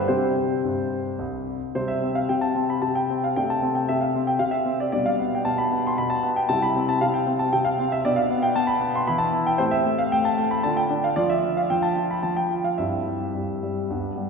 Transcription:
0.00 0.11 G2 medium
0.00 0.11 D3 soft
0.00 0.09 G3 soft
0.00 0.10 B3 soft
0.00 0.09 G4 soft
0.00 0.10 A4 soft
0.00 0.11 B4 medium
0.00 0.08 C5 medium
0.00 0.10 D5 medium
0.08 0.47 C3 soft
0.08 0.53 G3 soft
0.08 0.53 C4 soft
0.08 1.15 G4 soft
0.08 1.19 C5 medium
0.64 1.03 G2 soft
1.19 1.58 C2 soft
1.75 2.28 C3 soft
1.75 3.31 G3 soft
1.75 2.01 C4 soft
1.75 1.88 C5 medium
1.88 2.15 E5 medium
2.03 2.54 C4 soft
2.15 2.28 F5 medium
2.29 2.81 C3 soft
2.29 2.42 G5 medium
2.41 2.68 A5 medium
2.55 3.09 C4 soft
2.70 2.82 B5 medium
2.82 3.34 C3 soft
2.82 2.95 A5 medium
2.95 3.22 G5 medium
3.10 3.35 C4 soft
3.24 3.36 F5 medium
3.36 3.88 C3 medium
3.36 4.91 A3 soft
3.36 4.91 D4 soft
3.36 3.49 G5 medium
3.50 3.75 A5 medium
3.63 4.13 C4 soft
3.75 3.88 G5 medium
3.89 4.38 C3 soft
3.89 4.01 E5 medium
4.01 4.27 F5 medium
4.15 4.64 C4 soft
4.27 4.40 G5 medium
4.39 4.91 C3 soft
4.39 4.53 F5 medium
4.51 4.79 E5 medium
4.66 4.92 C4 soft
4.80 4.91 D5 medium
4.92 5.44 B2 medium
4.92 6.46 G3 soft
4.92 6.46 D4 soft
4.92 5.06 D5 medium
5.06 5.33 F5 medium
5.19 5.70 B3 soft
5.35 5.47 G5 medium
5.45 5.97 B2 soft
5.45 5.59 A5 medium
5.58 5.85 B5 medium
5.72 6.21 B3 soft
5.87 5.99 C6 medium
5.98 6.49 B2 soft
5.98 6.11 B5 medium
6.10 6.36 A5 medium
6.23 6.48 B3 medium
6.36 6.50 G5 medium
6.49 7.00 C3 medium
6.49 8.01 G3 soft
6.49 8.01 E4 soft
6.49 6.62 A5 medium
6.62 6.89 B5 medium
6.76 7.25 C4 medium
6.89 7.02 A5 medium
7.01 7.52 C3 soft
7.01 7.14 F5 medium
7.14 7.40 G5 medium
7.26 7.78 C4 medium
7.39 7.53 A5 medium
7.53 8.04 C3 medium
7.53 7.66 G5 medium
7.65 7.91 F5 medium
7.79 8.04 C4 medium
7.92 8.05 E5 medium
8.05 8.54 B2 medium
8.05 8.28 B3 soft
8.05 9.05 D4 soft
8.05 8.18 D5 medium
8.16 8.43 F5 medium
8.30 8.79 B3 medium
8.43 8.56 G5 medium
8.55 9.06 B2 medium
8.55 8.69 A5 medium
8.67 8.94 B5 medium
8.80 9.06 B3 soft
8.95 9.09 C6 medium
9.07 9.58 E3 medium
9.07 9.56 B3 soft
9.07 9.32 E4 soft
9.07 9.21 B5 medium
9.18 9.46 A5 medium
9.34 9.59 E4 medium
9.46 9.60 G5 medium
9.58 10.11 A2 medium
9.58 10.59 C4 soft
9.58 10.59 G4 soft
9.58 9.72 C5 medium
9.71 9.98 E5 medium
9.86 10.36 A3 medium
9.98 10.12 F5 medium
10.12 10.63 A2 medium
10.12 10.25 G5 medium
10.25 10.51 A5 medium
10.38 10.63 A3 medium
10.51 10.64 B5 medium
10.63 11.15 D3 medium
10.63 10.89 D4 soft
10.63 11.13 F4 soft
10.63 10.77 A5 medium
10.77 11.03 G5 medium
10.90 11.15 D4 medium
11.04 11.17 F5 medium
11.16 11.69 F3 medium
11.16 12.74 D4 soft
11.16 11.42 F4 soft
11.16 11.29 D5 medium
11.30 11.56 E5 medium
11.44 11.95 F4 soft
11.57 11.70 F5 medium
11.70 12.22 F3 soft
11.70 11.83 G5 medium
11.83 12.09 A5 medium
11.97 12.49 F4 soft
12.11 12.23 B5 medium
12.23 12.77 F3 soft
12.23 12.36 A5 medium
12.37 12.64 G5 medium
12.51 12.77 F4 soft
12.64 12.78 F5 medium
12.78 13.33 G2 soft
12.78 13.86 C4 soft
12.78 13.86 E4 soft
12.78 14.17 E5 medium
13.07 13.62 G3 soft
13.35 13.88 G2 soft
13.63 13.89 G3 soft
13.90 14.30 G2 soft
13.90 14.30 B3 soft
13.90 14.30 D4 soft
14.18 14.30 G3 soft

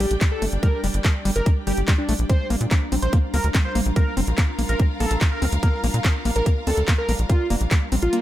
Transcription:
0.00 0.06 A#1 loud
0.00 8.21 G3 medium
0.00 0.06 G3 loud
0.00 3.78 D4 medium
0.00 8.21 D4 medium
0.00 3.84 G4 medium
0.00 0.14 G4 medium
0.00 3.65 D5 medium
0.00 3.19 G5 loud
0.00 open hi-hat loud
0.11 0.17 A#1 medium
0.11 closed hi-hat medium
0.21 0.24 G3 medium
0.21 kick loud
0.21 clap loud
0.21 closed hi-hat medium
0.32 0.45 A4 loud
0.42 0.48 G1 medium
0.42 0.45 A3 medium
0.42 open hi-hat loud
0.52 0.58 G1 medium
0.52 closed hi-hat medium
0.63 0.68 G3 loud
0.63 0.80 A#4 loud
0.63 kick loud
0.63 closed hi-hat medium
0.84 0.90 F1 medium
0.84 0.87 G3 medium
0.84 open hi-hat loud
0.94 1.00 G1 medium
0.94 closed hi-hat medium
1.04 1.08 A3 medium
1.04 kick loud
1.04 clap loud
1.04 closed hi-hat medium
1.25 1.31 G1 loud
1.25 1.31 G3 loud
1.25 open hi-hat loud
1.36 1.42 G1 medium
1.36 1.49 A#4 loud
1.36 closed hi-hat medium
1.46 1.49 G3 medium
1.46 kick loud
1.46 closed hi-hat medium
1.67 1.73 G1 loud
1.67 1.72 G3 medium
1.67 1.80 G4 medium
1.67 open hi-hat loud
1.77 1.83 G1 medium
1.77 closed hi-hat medium
1.88 1.93 G3 loud
1.88 kick loud
1.88 clap loud
1.88 closed hi-hat medium
1.98 2.11 D4 loud
2.09 2.15 A#1 loud
2.09 2.14 A3 medium
2.09 open hi-hat loud
2.19 2.25 A#1 medium
2.19 closed hi-hat medium
2.29 2.33 C4 medium
2.29 8.21 F4 medium
2.29 2.47 C5 loud
2.29 kick loud
2.29 closed hi-hat medium
2.50 2.56 A#1 loud
2.50 2.56 A#3 loud
2.50 open hi-hat loud
2.61 2.67 A#2 medium
2.61 8.21 A#4 medium
2.61 8.21 A#5 medium
2.61 closed hi-hat medium
2.71 2.74 A#3 medium
2.71 kick loud
2.71 clap loud
2.71 closed hi-hat medium
2.92 2.98 A#1 loud
2.92 2.95 C4 medium
2.92 open hi-hat loud
2.97 8.21 F5 medium
3.02 3.08 A#1 medium
3.02 3.16 C5 loud
3.02 closed hi-hat medium
3.13 3.18 A#3 loud
3.13 kick loud
3.13 closed hi-hat medium
3.34 3.40 D2 loud
3.34 3.37 A#3 medium
3.34 3.47 A#4 medium
3.34 open hi-hat loud
3.44 3.50 D2 medium
3.44 closed hi-hat medium
3.54 3.58 C4 medium
3.54 kick loud
3.54 clap loud
3.54 closed hi-hat medium
3.65 3.78 C5 loud
3.75 3.81 A#1 loud
3.75 3.81 A#3 loud
3.75 open hi-hat loud
3.86 3.92 A#1 medium
3.86 closed hi-hat medium
3.96 3.99 A#3 medium
3.96 4.14 A#4 loud
3.96 kick loud
3.96 closed hi-hat medium
4.17 4.23 F1 loud
4.17 4.20 C4 medium
4.17 open hi-hat loud
4.27 4.33 A#1 medium
4.27 closed hi-hat medium
4.38 4.43 A#3 loud
4.38 kick loud
4.38 clap loud
4.38 closed hi-hat medium
4.59 4.65 A#1 loud
4.59 4.62 A#3 medium
4.59 open hi-hat loud
4.69 4.75 A#1 medium
4.69 4.82 A#4 loud
4.69 closed hi-hat medium
4.79 4.83 C4 medium
4.79 kick loud
4.79 closed hi-hat medium
5.00 5.06 A#1 loud
5.00 5.06 A#3 loud
5.00 5.14 A4 medium
5.00 open hi-hat loud
5.11 5.17 A#1 medium
5.11 closed hi-hat medium
5.21 5.24 A#3 medium
5.21 kick loud
5.21 clap loud
5.21 closed hi-hat medium
5.32 5.45 A#4 medium
5.42 5.48 D2 loud
5.42 5.45 C4 medium
5.42 open hi-hat loud
5.52 5.58 D2 medium
5.52 closed hi-hat medium
5.63 5.68 A#3 loud
5.63 5.80 A#4 loud
5.63 kick loud
5.63 closed hi-hat medium
5.84 5.90 A#1 medium
5.84 5.87 A#3 medium
5.84 open hi-hat loud
5.94 6.00 A#2 medium
5.94 closed hi-hat medium
6.04 6.08 C4 medium
6.04 kick loud
6.04 clap loud
6.04 closed hi-hat medium
6.25 6.31 A#1 loud
6.25 6.31 A#3 loud
6.25 open hi-hat loud
6.36 6.42 A#1 medium
6.36 6.49 A#4 loud
6.36 closed hi-hat medium
6.46 6.49 A#3 medium
6.46 kick loud
6.46 closed hi-hat medium
6.67 6.73 D2 medium
6.67 6.70 C4 medium
6.67 6.80 A4 loud
6.67 open hi-hat loud
6.77 6.83 D2 medium
6.77 closed hi-hat medium
6.88 6.93 A#3 loud
6.88 kick loud
6.88 clap loud
6.88 closed hi-hat medium
6.98 7.11 A#4 medium
7.09 7.15 A#1 loud
7.09 7.12 A#3 medium
7.09 open hi-hat loud
7.19 7.25 A#1 medium
7.19 closed hi-hat medium
7.29 7.33 C4 medium
7.29 7.47 F4 loud
7.29 kick loud
7.29 closed hi-hat medium
7.50 7.56 F1 loud
7.50 7.56 A#3 loud
7.50 open hi-hat loud
7.61 7.67 A#1 medium
7.61 closed hi-hat medium
7.71 7.74 A#3 medium
7.71 kick loud
7.71 clap loud
7.71 closed hi-hat medium
7.92 7.98 A#1 loud
7.92 7.95 C4 medium
7.92 open hi-hat loud
8.02 8.08 A#1 medium
8.02 8.16 F4 medium
8.02 closed hi-hat medium
8.13 8.21 A#3 loud
8.13 closed hi-hat medium

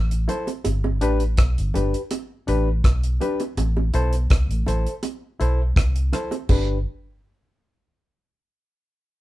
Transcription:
0.00 0.26 A1 medium
0.11 closed hi-hat medium
0.28 0.49 E4 medium
0.28 0.49 A4 medium
0.28 0.49 C5 medium
0.28 closed hi-hat medium
0.28 low bongo medium
0.47 closed hi-hat medium
0.47 high bongo medium
0.64 1.02 G1 loud
0.64 closed hi-hat medium
0.64 high bongo medium
0.84 high bongo medium
1.01 1.36 A1 medium
1.01 1.22 D4 medium
1.01 1.22 G4 medium
1.01 1.22 B4 loud
1.01 closed hi-hat medium
1.20 closed hi-hat medium
1.37 1.56 B1 medium
1.37 kick loud
1.37 cross-stick loud
1.37 closed hi-hat medium
1.58 1.74 G1 medium
1.58 closed hi-hat medium
1.74 1.93 G1 loud
1.74 1.95 D4 medium
1.74 1.92 G4 medium
1.74 1.93 B4 medium
1.74 closed hi-hat medium
1.74 low bongo medium
1.94 2.01 G4 soft
1.94 2.01 B4 soft
1.94 closed hi-hat medium
2.11 closed hi-hat medium
2.11 high bongo medium
2.47 2.82 A1 loud
2.47 2.68 D4 medium
2.47 2.68 G4 medium
2.47 2.69 B4 loud
2.47 closed hi-hat medium
2.84 3.18 B1 medium
2.84 kick loud
2.84 cross-stick loud
2.84 closed hi-hat medium
3.04 closed hi-hat medium
3.21 3.41 D4 medium
3.21 3.41 G4 medium
3.21 3.42 B4 medium
3.21 closed hi-hat medium
3.21 low bongo medium
3.40 closed hi-hat medium
3.40 high bongo medium
3.57 3.91 A1 loud
3.57 closed hi-hat medium
3.57 high bongo medium
3.77 high bongo medium
3.94 4.28 B1 loud
3.94 4.14 E4 medium
3.94 4.15 A4 medium
3.94 4.15 C5 loud
3.94 closed hi-hat medium
4.13 closed hi-hat medium
4.30 4.48 C2 medium
4.30 kick loud
4.30 cross-stick loud
4.30 closed hi-hat medium
4.49 4.66 A1 medium
4.49 closed hi-hat soft
4.66 4.85 A1 medium
4.66 4.87 E4 medium
4.66 4.86 A4 medium
4.66 4.86 C5 medium
4.66 closed hi-hat medium
4.66 low bongo medium
4.87 4.93 A4 soft
4.87 4.93 C5 soft
4.87 closed hi-hat soft
5.03 closed hi-hat medium
5.03 high bongo medium
5.40 5.74 B1 medium
5.40 5.60 E4 medium
5.40 5.61 A4 medium
5.40 5.61 C5 medium
5.40 closed hi-hat medium
5.76 6.10 C2 medium
5.76 kick loud
5.76 cross-stick loud
5.76 closed hi-hat medium
5.96 closed hi-hat medium
6.13 6.33 E4 medium
6.13 6.34 A4 medium
6.13 6.34 C5 medium
6.13 cross-stick medium
6.13 closed hi-hat medium
6.13 low bongo medium
6.31 closed hi-hat medium
6.31 high bongo medium
6.49 6.84 G1 medium
6.49 6.77 D4 medium
6.49 6.77 G4 medium
6.49 6.77 B4 medium
6.49 kick loud
6.49 crash medium
6.49 high bongo medium

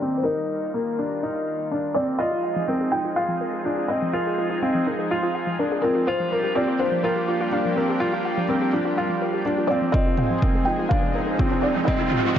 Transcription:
0.00 2.16 D#3 medium
0.00 2.16 G3 medium
0.00 2.16 A#3 medium
0.00 0.24 C4 medium
0.00 0.24 G4 medium
0.00 2.16 A#4 medium
0.00 0.16 C5 medium
0.17 0.26 C5 medium
0.23 0.69 D#4 medium
0.23 2.18 F4 medium
0.23 2.00 A#4 medium
0.74 0.96 A#3 medium
0.99 1.21 D4 medium
1.23 1.66 D#4 medium
1.71 1.93 D4 medium
1.94 2.18 C4 medium
1.94 2.20 D5 medium
2.19 9.90 F3 medium
2.19 6.03 G#3 medium
2.19 6.04 C4 medium
2.19 6.03 D#4 medium
2.19 2.63 F4 medium
2.19 2.28 F4 medium
2.19 6.03 G#4 medium
2.19 2.94 D#5 medium
2.32 2.37 F4 medium
2.44 2.52 F5 medium
2.56 2.64 F3 medium
2.68 2.90 C4 medium
2.68 2.74 A#4 medium
2.81 2.85 G#4 medium
2.92 3.14 D#4 medium
2.92 3.01 F4 medium
2.92 3.17 G5 medium
3.05 3.10 F4 medium
3.16 3.60 F4 medium
3.16 3.91 F5 medium
3.16 3.25 F5 medium
3.28 3.37 F3 medium
3.41 3.46 A#4 medium
3.53 3.58 G#4 medium
3.65 3.87 D4 medium
3.65 3.73 F4 medium
3.78 3.82 F4 medium
3.88 4.11 C4 medium
3.88 5.79 D#5 medium
3.88 3.98 F5 medium
4.02 4.10 F3 medium
4.13 4.57 F4 medium
4.13 4.19 A#4 medium
4.27 4.31 G#4 medium
4.38 4.46 F4 medium
4.50 4.55 F4 medium
4.62 4.84 C4 medium
4.62 4.70 F5 medium
4.75 4.82 F3 medium
4.87 5.08 D#4 medium
4.87 4.91 A#4 medium
4.99 5.03 G#4 medium
5.11 5.54 F4 medium
5.11 5.19 F4 medium
5.23 5.28 F4 medium
5.35 5.43 F5 medium
5.47 5.55 F3 medium
5.59 5.81 D4 medium
5.59 5.64 A#4 medium
5.72 5.76 G#4 medium
5.82 6.05 C4 medium
5.82 5.91 F4 medium
5.82 6.07 A#4 medium
5.95 6.00 F4 medium
6.06 9.90 G3 medium
6.06 9.90 A#3 medium
6.06 9.90 D4 medium
6.06 6.51 F4 medium
6.06 9.90 G4 medium
6.06 6.32 C5 medium
6.06 6.15 F5 medium
6.20 6.28 F3 medium
6.31 6.36 A#4 medium
6.31 6.57 A#4 medium
6.43 6.48 G4 medium
6.55 6.77 C4 medium
6.55 6.64 F4 medium
6.55 6.80 D5 medium
6.68 6.73 F4 medium
6.79 7.02 D4 medium
6.79 7.04 C5 medium
6.79 6.88 F5 medium
6.92 7.00 F3 medium
7.03 7.47 F4 medium
7.03 7.08 A#4 medium
7.03 9.42 A#4 medium
7.16 7.21 G4 medium
7.28 7.36 F4 loud
7.41 7.45 F4 medium
7.52 7.74 D4 medium
7.52 7.60 F5 medium
7.65 7.73 F3 medium
7.76 7.98 C4 medium
7.76 7.82 A#4 medium
7.89 7.94 G4 medium
8.00 8.44 F4 medium
8.00 8.09 F4 medium
8.13 8.18 F4 medium
8.25 8.33 F5 medium
8.38 8.45 F3 medium
8.49 8.70 C4 medium
8.49 8.54 A#4 medium
8.62 8.66 G4 medium
8.73 8.95 D4 medium
8.73 8.81 F4 medium
8.85 8.90 F4 medium
8.98 9.41 F4 medium
8.98 9.05 F5 medium
9.10 9.18 F3 medium
9.22 9.27 A#4 medium
9.34 9.38 G4 medium
9.46 9.67 D4 medium
9.46 9.54 F4 medium
9.58 9.63 F4 medium
9.67 9.92 C4 medium
9.67 9.94 D5 medium
9.67 9.78 F5 medium
9.82 9.90 F3 medium
9.92 12.39 F3 medium
9.92 12.39 G#3 medium
9.92 12.39 C4 medium
9.92 10.37 C4 medium
9.92 12.39 D#4 medium
9.92 10.02 F4 loud
9.92 11.86 G#4 medium
9.92 10.68 D#5 medium
9.92 kick medium
9.92 riser medium
10.07 10.11 F4 medium
10.17 10.26 F5 medium
10.17 mid tom medium
10.30 10.38 F3 medium
10.42 10.64 C4 medium
10.42 10.48 A#4 medium
10.42 kick medium
10.55 10.60 G#4 medium
10.65 10.89 D#4 medium
10.65 10.75 F4 medium
10.65 10.91 G5 medium
10.79 10.84 F4 loud
10.89 11.13 D4 medium
10.89 11.65 F5 medium
10.89 10.99 F5 medium
10.89 kick medium
11.02 11.11 F3 medium
11.15 11.37 D#4 medium
11.15 11.20 A#4 medium
11.27 11.32 G#4 medium
11.39 11.83 C4 medium
11.39 11.47 F4 medium
11.39 kick medium
11.52 11.56 F4 medium
11.62 11.88 D5 medium
11.62 11.71 F5 medium
11.76 11.84 F3 medium
11.85 12.31 C4 medium
11.85 12.39 G4 medium
11.85 11.93 A#4 medium
11.85 12.39 D#5 medium
11.85 kick loud
12.00 12.05 G#4 medium
12.12 12.20 F4 medium
12.12 mid tom medium
12.25 12.29 F4 loud

